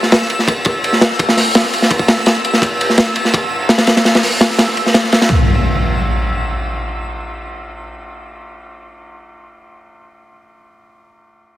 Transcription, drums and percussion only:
0.03 snare
0.12 snare, ride
0.21 snare
0.30 ride
0.39 snare
0.48 kick, ride
0.65 kick, ride
0.84 ride
0.93 snare
1.01 snare, ride
1.11 snare
1.19 kick, ride
1.29 snare
1.37 snare, open hi-hat
1.55 snare, ride
1.64 snare
1.73 ride
1.82 snare
1.91 kick, ride
1.99 kick
2.08 snare, ride
2.17 snare
2.26 snare, ride
2.35 ride
2.44 ride
2.53 snare
2.62 kick, ride
2.81 ride
2.90 snare
2.98 snare, ride
3.06 snare
3.16 ride
3.25 snare
3.34 kick, ride
3.69 snare, ride
3.78 snare, ride
3.87 snare, ride
3.97 snare, ride
4.05 snare, ride
4.15 snare, ride
4.23 snare, open hi-hat
4.41 snare, ride
4.50 snare
4.58 snare, ride
4.67 snare
4.77 ride
4.86 snare
4.94 snare, ride
5.04 snare
5.12 snare, ride
5.22 snare, ride
5.29 kick

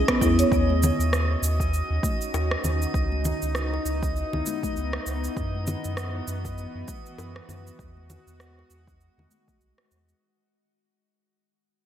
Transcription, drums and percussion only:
0.08 kick, cross-stick, closed hi-hat, high conga
0.21 kick, high bongo, cabasa
0.39 closed hi-hat, cabasa
0.52 kick, cabasa
0.70 high conga
0.83 low conga, cabasa
1.00 cabasa
1.13 cross-stick, cabasa
1.43 cabasa
1.60 kick, cabasa
1.74 cabasa
2.03 kick, high conga, cabasa
2.21 cabasa
2.34 high bongo, cabasa
2.51 cross-stick
2.64 low conga, cabasa
2.82 cabasa
2.94 kick, cabasa
3.12 high conga
3.25 low conga, cabasa
3.42 cabasa
3.55 cross-stick, cabasa
3.74 high bongo
3.86 cabasa
4.03 kick, cabasa
4.16 cabasa
4.33 low conga
4.46 high conga, cabasa
4.63 kick, high conga, cabasa
4.77 cabasa
4.93 cross-stick, high conga
5.07 cabasa
5.24 cabasa
5.37 kick, cabasa
5.55 high conga
5.67 low conga, cabasa
5.84 cabasa
5.97 cross-stick, cabasa
6.28 cabasa
6.45 kick, cabasa
6.58 cabasa
6.88 kick, high conga, cabasa
7.06 cabasa
7.18 high bongo, cabasa
7.36 cross-stick
7.49 low conga, cabasa
7.67 cabasa
7.79 kick, cabasa
7.97 high conga
8.10 low conga, cabasa
8.28 cabasa
8.40 cross-stick, cabasa
8.59 high bongo
8.70 cabasa
8.87 kick, cabasa
9.01 cabasa
9.18 high conga, low conga
9.31 high conga, cabasa
9.48 kick, high conga, cabasa
9.61 cabasa
9.78 cross-stick, high conga
9.91 cabasa
10.09 cabasa

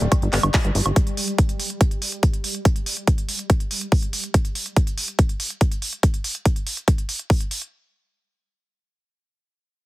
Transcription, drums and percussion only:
0.01 closed hi-hat
0.12 kick, closed hi-hat, high woodblock
0.22 closed hi-hat
0.33 clap, open hi-hat
0.43 closed hi-hat, high woodblock
0.54 kick, clap, open hi-hat
0.65 closed hi-hat
0.75 open hi-hat
0.86 closed hi-hat, high woodblock
0.96 kick, closed hi-hat
1.07 closed hi-hat
1.17 open hi-hat
1.28 closed hi-hat
1.38 kick, closed hi-hat
1.49 closed hi-hat
1.60 open hi-hat
1.70 closed hi-hat
1.81 kick, closed hi-hat
1.91 closed hi-hat
2.02 open hi-hat
2.12 closed hi-hat
2.23 kick, closed hi-hat
2.33 closed hi-hat
2.44 open hi-hat
2.55 closed hi-hat
2.65 kick, closed hi-hat
2.76 closed hi-hat
2.86 open hi-hat
2.97 closed hi-hat
3.07 kick, closed hi-hat
3.18 closed hi-hat
3.29 open hi-hat
3.39 closed hi-hat
3.50 kick, closed hi-hat
3.60 closed hi-hat
3.71 open hi-hat
3.81 closed hi-hat
3.92 kick, open hi-hat
4.03 closed hi-hat
4.13 open hi-hat
4.24 closed hi-hat
4.34 kick, closed hi-hat
4.45 closed hi-hat
4.55 open hi-hat
4.66 closed hi-hat
4.76 kick, closed hi-hat
4.87 closed hi-hat
4.98 open hi-hat
5.08 closed hi-hat
5.19 kick, closed hi-hat
5.29 closed hi-hat
5.40 open hi-hat
5.50 closed hi-hat
5.61 kick, closed hi-hat
5.72 closed hi-hat
5.82 open hi-hat
5.93 closed hi-hat
6.03 kick, closed hi-hat
6.14 closed hi-hat
6.24 open hi-hat
6.35 closed hi-hat
6.45 kick, closed hi-hat
6.56 closed hi-hat
6.67 open hi-hat
6.77 closed hi-hat
6.88 kick, closed hi-hat
6.98 closed hi-hat
7.09 open hi-hat
7.19 closed hi-hat
7.30 kick, open hi-hat
7.41 closed hi-hat
7.51 open hi-hat
7.62 closed hi-hat

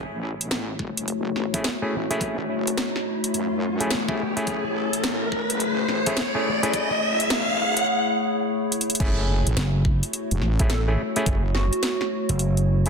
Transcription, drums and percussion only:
0.41 closed hi-hat
0.51 snare, closed hi-hat
0.79 kick
0.97 closed hi-hat
1.08 closed hi-hat
1.36 snare
1.54 kick, closed hi-hat
1.64 snare, closed hi-hat
2.11 closed hi-hat
2.21 kick, closed hi-hat
2.67 closed hi-hat
2.77 snare, closed hi-hat
2.96 snare
3.24 closed hi-hat
3.34 closed hi-hat
3.81 closed hi-hat
3.91 snare, closed hi-hat
4.09 kick
4.37 closed hi-hat
4.47 kick, closed hi-hat
4.93 closed hi-hat
5.04 snare, closed hi-hat
5.32 kick
5.50 closed hi-hat
5.60 closed hi-hat
5.88 snare
6.06 kick, closed hi-hat
6.17 snare, closed hi-hat
6.63 closed hi-hat
6.74 kick, closed hi-hat
7.20 closed hi-hat
7.30 snare, closed hi-hat
7.77 closed hi-hat
8.72 closed hi-hat
8.81 closed hi-hat
8.90 closed hi-hat
8.95 closed hi-hat
9.00 kick, closed hi-hat, crash
9.47 closed hi-hat
9.57 snare, closed hi-hat
9.85 kick
10.03 closed hi-hat
10.13 closed hi-hat
10.31 closed hi-hat
10.42 snare
10.59 kick, closed hi-hat
10.70 snare, closed hi-hat
11.16 closed hi-hat
11.26 kick, closed hi-hat
11.55 snare
11.73 closed hi-hat
11.83 snare, closed hi-hat
12.01 snare
12.29 closed hi-hat
12.39 closed hi-hat
12.57 closed hi-hat
12.86 closed hi-hat

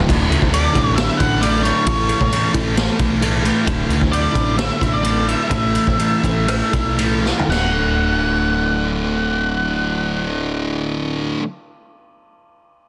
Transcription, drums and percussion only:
0.09 kick, crash
0.32 ride
0.42 kick
0.54 ride
0.75 kick, ride
0.98 snare, ride
1.20 kick, ride
1.43 ride
1.65 ride
1.87 kick, ride
2.09 ride
2.21 kick
2.32 ride
2.54 kick, ride
2.77 snare, ride
2.99 kick, ride
3.22 ride
3.45 ride
3.67 kick, ride
3.90 ride
4.01 kick
4.13 ride
4.35 kick, ride
4.59 snare, ride
4.81 kick, ride
5.05 ride
5.29 ride
5.51 kick, ride
5.75 ride
5.87 kick
5.99 ride
6.24 kick, ride
6.48 cross-stick, ride
6.73 kick, ride
6.99 ride
7.25 snare
7.39 floor tom
7.52 snare, crash

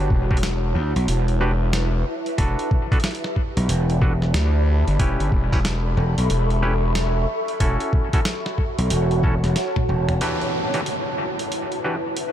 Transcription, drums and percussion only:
0.10 kick
0.31 kick
0.37 closed hi-hat
0.43 snare, closed hi-hat
0.96 closed hi-hat
1.08 closed hi-hat
1.28 closed hi-hat
1.73 snare, closed hi-hat
2.26 closed hi-hat
2.38 kick, closed hi-hat
2.59 closed hi-hat
2.71 kick
2.92 kick, closed hi-hat
3.00 snare, closed hi-hat
3.04 closed hi-hat
3.11 closed hi-hat
3.15 closed hi-hat
3.24 snare
3.36 kick
3.57 closed hi-hat
3.69 closed hi-hat
3.90 closed hi-hat
4.02 kick
4.22 snare
4.34 snare, closed hi-hat
4.88 closed hi-hat
5.00 kick, closed hi-hat
5.20 closed hi-hat
5.32 kick
5.52 kick, closed hi-hat
5.65 snare, closed hi-hat
6.18 closed hi-hat
6.30 closed hi-hat
6.50 closed hi-hat
6.95 snare, closed hi-hat
7.48 closed hi-hat
7.60 kick, closed hi-hat
7.80 closed hi-hat
7.93 kick
8.13 kick, closed hi-hat
8.25 snare, closed hi-hat
8.46 snare
8.58 kick
8.79 closed hi-hat
8.90 closed hi-hat
9.11 closed hi-hat
9.23 kick
9.44 snare, closed hi-hat
9.56 snare, closed hi-hat
9.76 kick, high tom
10.09 closed hi-hat, mid tom
10.21 closed hi-hat
10.41 closed hi-hat
10.74 closed hi-hat
10.86 closed hi-hat
11.39 closed hi-hat
11.52 closed hi-hat
11.72 closed hi-hat
12.17 closed hi-hat

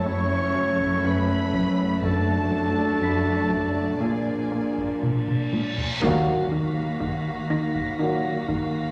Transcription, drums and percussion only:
0.80 taiko
1.53 taiko
2.02 taiko
3.51 taiko
4.78 taiko
5.03 taiko mid
5.28 taiko mid
5.53 taiko high
5.78 taiko low
6.03 taiko
7.01 taiko
7.75 taiko
8.49 taiko

